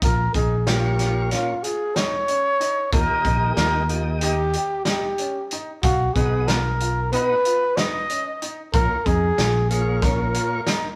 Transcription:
0.02 0.27 A#1 medium
0.02 0.20 F4 medium
0.02 0.33 A#4 medium
0.02 kick loud
0.02 closed hi-hat medium
0.34 1.33 A#1 medium
0.34 0.52 D#4 medium
0.34 0.69 G#4 medium
0.34 kick medium
0.34 closed hi-hat medium
0.66 1.30 A#2 medium
0.66 1.30 A#3 medium
0.66 1.31 F4 medium
0.66 0.84 F4 medium
0.66 1.32 G4 medium
0.66 1.31 C#5 medium
0.66 snare loud
0.66 closed hi-hat medium
0.99 1.16 F4 medium
0.99 snare soft
0.99 closed hi-hat medium
1.31 1.54 A#2 medium
1.31 1.54 A#3 soft
1.31 1.49 C#4 medium
1.31 1.55 F4 soft
1.31 1.65 F4 medium
1.31 1.55 C#5 medium
1.31 snare soft
1.31 closed hi-hat medium
1.63 1.81 F4 medium
1.63 1.97 G#4 medium
1.63 closed hi-hat medium
1.96 2.13 D#4 medium
1.96 2.92 C#5 loud
1.96 snare loud
1.96 closed hi-hat medium
2.28 2.45 C#4 medium
2.28 closed hi-hat medium
2.60 2.77 D#4 medium
2.60 closed hi-hat medium
2.92 3.05 D#2 medium
2.92 3.83 D#3 medium
2.92 3.83 A#3 medium
2.92 3.09 F4 medium
2.92 3.83 G4 medium
2.92 3.54 A#4 loud
2.92 3.84 D#5 medium
2.92 kick loud
2.92 closed hi-hat medium
3.25 3.50 A#1 medium
3.25 3.42 D#4 medium
3.25 kick medium
3.25 closed hi-hat medium
3.56 4.55 D#2 medium
3.56 3.75 F4 medium
3.56 3.92 A#4 medium
3.56 snare loud
3.56 closed hi-hat medium
3.89 4.35 D#3 medium
3.89 4.35 A#3 medium
3.89 4.07 F4 medium
3.89 4.35 G4 medium
3.89 4.35 D#5 medium
3.89 closed hi-hat medium
4.21 4.39 D#4 medium
4.21 4.82 G4 medium
4.21 closed hi-hat medium
4.53 4.72 G4 medium
4.53 closed hi-hat medium
4.85 5.04 D#4 medium
4.85 5.55 G4 medium
4.85 snare loud
4.85 closed hi-hat medium
5.18 5.36 C#4 medium
5.18 closed hi-hat medium
5.51 5.69 D#4 medium
5.51 closed hi-hat medium
5.83 6.08 B1 medium
5.83 6.16 F#4 medium
5.83 6.01 F5 medium
5.83 kick loud
5.83 closed hi-hat medium
6.14 7.13 B1 medium
6.14 6.61 B2 medium
6.14 6.61 B3 medium
6.14 6.33 D#4 medium
6.14 6.61 F#4 medium
6.14 6.49 G#4 medium
6.14 6.61 D#5 medium
6.14 kick medium
6.14 closed hi-hat medium
6.48 6.66 F4 medium
6.48 7.12 A#4 loud
6.48 snare loud
6.48 closed hi-hat medium
6.80 6.98 F4 medium
6.80 closed hi-hat medium
7.12 7.35 B2 medium
7.12 7.35 B3 medium
7.12 7.30 D#4 medium
7.12 7.35 F#4 medium
7.12 7.79 B4 loud
7.12 7.35 D#5 medium
7.12 closed hi-hat medium
7.45 7.62 F4 medium
7.45 closed hi-hat medium
7.77 7.94 D#4 medium
7.77 8.50 D#5 loud
7.77 snare loud
7.77 closed hi-hat medium
8.09 8.27 C#4 medium
8.09 closed hi-hat medium
8.42 8.59 D#4 medium
8.42 closed hi-hat medium
8.74 8.86 A#1 medium
8.74 8.96 A#2 medium
8.74 8.96 A#3 medium
8.74 8.91 F4 medium
8.74 8.96 F4 medium
8.74 9.07 A#4 medium
8.74 8.97 C#5 medium
8.74 kick loud
8.74 closed hi-hat medium
9.06 9.31 F2 medium
9.06 9.23 D#4 medium
9.06 9.70 G#4 loud
9.06 kick medium
9.06 closed hi-hat medium
9.38 10.36 A#1 medium
9.38 9.55 F4 medium
9.38 snare loud
9.38 closed hi-hat medium
9.70 10.60 A#2 medium
9.70 10.60 A#3 medium
9.70 10.61 F4 medium
9.70 9.87 F4 medium
9.70 10.04 G#4 medium
9.70 10.61 C#5 medium
9.70 closed hi-hat medium
10.02 10.19 C#4 medium
10.02 10.96 A#4 medium
10.02 kick loud
10.02 snare soft
10.02 closed hi-hat medium
10.34 10.52 F4 medium
10.34 closed hi-hat medium
10.67 10.84 D#4 medium
10.67 snare loud
10.67 closed hi-hat medium

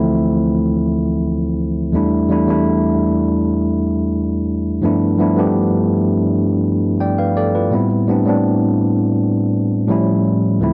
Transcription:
0.00 1.96 D2 medium
0.00 1.96 E3 medium
0.00 1.96 F3 medium
0.00 1.94 A3 medium
0.00 1.96 C4 medium
0.00 1.96 E4 medium
1.92 2.27 E2 medium
1.92 2.28 G3 medium
1.92 2.28 A3 medium
1.92 2.29 D4 medium
1.92 2.29 E4 medium
2.28 2.46 E2 medium
2.28 2.46 G3 medium
2.28 2.47 A3 medium
2.28 2.48 D4 medium
2.28 2.48 E4 medium
2.47 3.83 E2 medium
2.47 3.84 G3 medium
2.47 3.84 A3 medium
2.47 3.85 D4 medium
2.47 3.85 E4 medium
4.82 5.16 G2 medium
4.82 5.17 F3 medium
4.82 5.17 A3 medium
4.82 5.18 B3 medium
4.82 5.18 D4 medium
4.82 5.18 E4 medium
5.18 5.35 G2 medium
5.18 5.36 F3 medium
5.18 5.36 A3 medium
5.18 5.37 B3 medium
5.18 5.37 D4 medium
5.18 5.37 E4 medium
5.36 6.73 G2 medium
5.36 6.73 F3 medium
5.36 6.73 A3 medium
5.36 6.74 B3 medium
5.36 6.74 D4 medium
5.36 6.75 G4 medium
7.00 7.18 D5 medium
7.00 7.17 G5 medium
7.18 7.36 B4 medium
7.18 7.35 F5 medium
7.37 7.54 A4 medium
7.37 7.54 D5 medium
7.55 7.89 F4 medium
7.55 7.89 B4 medium
7.71 8.06 A2 medium
7.71 8.06 G3 medium
7.71 8.07 B3 medium
7.71 8.07 C4 medium
7.71 8.07 E4 medium
8.07 8.24 A2 medium
8.07 8.25 G3 medium
8.07 8.26 B3 medium
8.07 8.26 C4 medium
8.07 8.27 D4 medium
8.25 9.62 A2 medium
8.25 9.62 G3 medium
8.25 9.63 B3 medium
8.25 9.63 C4 medium
8.25 9.64 D4 medium
9.88 10.56 A2 medium
9.88 10.57 F3 medium
9.88 10.57 G3 medium
9.88 10.58 C#4 medium
9.88 10.58 E4 medium
10.60 10.73 D2 medium
10.60 10.73 F3 medium
10.60 10.73 A3 medium
10.60 10.73 C4 medium
10.60 10.73 E4 medium

